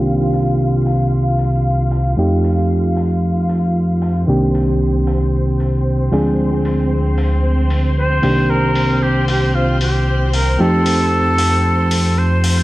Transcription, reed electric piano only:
Already playing: D#3 A#3 C4 D4 G4
2.17 F3 A3 C4 D#4 G4
4.27 D#3 A#3 C4 D4 G4
6.12 F3 G#3 C4 D4 G#4
8.22 D#3 A#3 C4 D4 G4
10.59 F3 A3 C4 D#4 G4

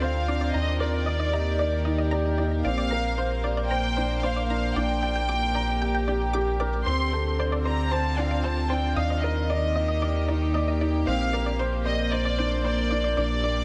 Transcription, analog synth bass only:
Already playing: D2
0.55 D#2
2.66 A#1
4.76 A#1
6.87 D2
8.97 D#2
11.08 A#1
13.18 A#1

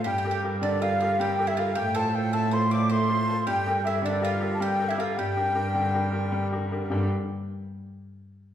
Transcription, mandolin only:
0.04 G4
0.18 G4
0.31 G4
0.63 D4
0.82 F4
1.01 F4
1.21 G4
1.47 E4
1.57 F4
1.75 G4
1.95 A4
2.33 A4
2.51 C5
2.71 D5
2.89 C5
3.47 G4
3.87 E4
4.06 D4
4.25 F4
4.62 G4
4.90 E4
5.00 F4
5.19 G4

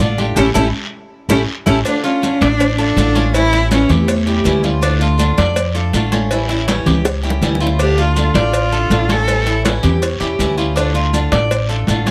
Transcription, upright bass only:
0.00 A1
0.36 A1
0.55 A1
1.29 A1
1.67 A1
2.41 A1
2.97 A1
3.89 E2
4.45 D2
5.38 F2
5.93 A1
6.86 C#2
7.41 D2
8.35 A1
8.90 A1
9.84 E2
10.21 E2
10.39 D2
11.32 A1
11.88 A1

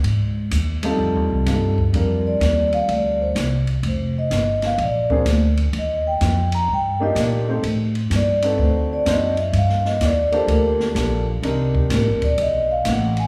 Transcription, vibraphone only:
1.97 A#4
2.27 D5
2.74 F5
2.92 D5
3.22 C5
3.88 C5
4.18 D#5
4.66 F5
4.83 D5
5.14 C5
5.78 D#5
6.07 G5
6.55 A#5
6.74 G5
7.03 D#5
8.16 D5
8.45 B4
8.63 C5
8.93 D5
9.10 D#5
9.40 E5
9.57 F5
9.86 D#5
10.04 D5
10.35 C5
10.52 A#4
10.82 G4
11.78 G4
11.94 A#4
12.24 D5
12.41 D#5
12.71 F5
13.20 G#5

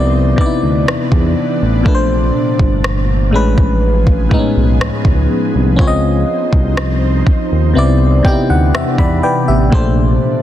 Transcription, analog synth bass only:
Already playing: C2
0.38 D2
0.63 D2
0.88 E2
1.12 E2
1.61 A1
1.86 A#1
2.60 G1
3.34 A1
4.31 B1
4.56 B1
4.81 C#2
5.05 C#2
5.54 C2
5.79 C#2
6.53 C2
7.27 D#2
7.52 D#2
7.76 C2
8.25 D2
8.50 D2
8.75 E2
8.99 E2
9.48 A1
9.73 A#1

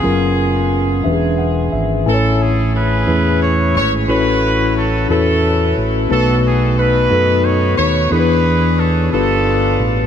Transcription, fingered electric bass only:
0.04 F#1
1.05 E1
1.73 G#1
2.07 A1
3.08 E2
3.75 G#1
4.08 A1
5.09 E2
5.78 A1
6.10 B1
7.11 F#2
7.79 D#2
8.11 E2
9.13 G1
9.80 A1

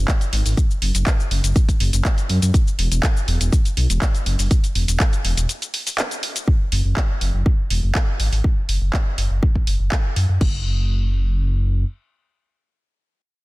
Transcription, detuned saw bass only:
0.33 G#1
0.46 G#1
0.82 F#1
0.95 F#1
1.31 F#1
1.44 F#1
1.80 F#1
1.93 F#1
2.30 F#2
2.42 F#2
2.79 E1
2.92 E1
3.28 E1
3.41 E1
3.77 B1
3.90 E1
4.26 F#1
4.39 F#1
4.75 E1
4.88 E1
5.25 E1
5.37 E1
6.72 F#1
6.85 F#1
7.21 F#1
7.34 F#1
7.71 E1
7.83 F#1
8.20 G#1
8.32 G#1
8.69 F#1
8.82 F#1
9.18 F#1
9.31 F#1
9.67 F#1
9.80 F#1
10.16 F#2
10.29 F#2
10.41 F#1

